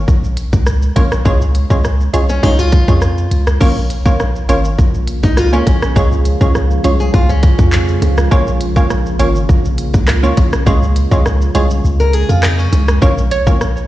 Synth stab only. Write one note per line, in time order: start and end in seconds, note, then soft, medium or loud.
0.96 1.15 A#3 medium
0.96 1.15 C#4 medium
0.96 1.15 F4 medium
0.96 1.15 C#5 medium
1.25 1.67 G#3 medium
1.25 1.67 C#4 medium
1.25 1.67 F4 medium
1.25 1.67 C#5 loud
1.70 1.88 G#3 medium
1.70 1.88 C#4 medium
1.70 1.88 F4 medium
1.70 1.88 C#5 medium
2.13 2.32 G#3 medium
2.13 2.32 C#4 medium
2.13 2.32 F4 medium
2.13 2.33 C#5 medium
2.43 2.84 G#3 loud
2.43 2.84 C#4 medium
2.43 2.84 F4 medium
2.43 2.85 C#5 loud
2.88 3.05 G#3 medium
2.88 3.05 C#4 medium
2.88 3.06 F4 medium
2.88 3.06 C#5 medium
3.60 4.02 A#3 loud
3.60 4.02 C#4 medium
3.60 4.02 F4 medium
3.60 4.02 C#5 loud
4.06 4.23 A#3 medium
4.06 4.23 C#4 medium
4.06 4.23 F4 medium
4.06 4.23 C#5 medium
4.49 4.68 A#3 medium
4.49 4.68 C#4 medium
4.49 4.68 F4 medium
4.49 4.68 C#5 medium
5.53 5.70 A#3 medium
5.53 5.70 C#4 medium
5.53 5.70 F4 medium
5.53 5.70 C#5 medium
5.96 6.37 G#3 loud
5.96 6.37 C#4 medium
5.96 6.37 F4 medium
5.96 6.38 C#5 loud
6.41 6.58 G#3 medium
6.41 6.58 C#4 medium
6.41 6.59 F4 medium
6.41 6.59 C#5 medium
6.84 7.03 G#3 medium
6.84 7.03 C#4 medium
6.84 7.03 F4 medium
6.84 7.03 C#5 medium
8.31 8.73 A#3 loud
8.31 8.73 C#4 medium
8.31 8.73 F4 medium
8.31 8.73 C#5 loud
8.76 8.94 A#3 medium
8.76 8.94 C#4 medium
8.76 8.94 F4 medium
8.76 8.94 C#5 medium
9.19 9.38 A#3 medium
9.19 9.38 C#4 medium
9.19 9.38 F4 medium
9.19 9.38 C#5 medium
10.23 10.41 A#3 medium
10.23 10.41 C#4 medium
10.23 10.41 F4 medium
10.23 10.41 C#5 medium
10.66 11.08 G#3 loud
10.66 11.08 C#4 medium
10.66 11.08 F4 medium
10.66 11.08 C#5 loud
11.11 11.29 G#3 medium
11.11 11.29 C#4 medium
11.11 11.29 F4 medium
11.11 11.29 C#5 medium
11.55 11.73 G#3 medium
11.55 11.74 C#4 medium
11.55 11.74 F4 medium
11.55 11.74 C#5 medium
13.02 13.43 A#3 loud
13.02 13.43 C#4 medium
13.02 13.43 F4 medium
13.02 13.43 C#5 loud
13.47 13.87 A#3 medium
13.47 13.87 C#4 medium
13.47 13.87 F4 medium
13.47 13.87 C#5 medium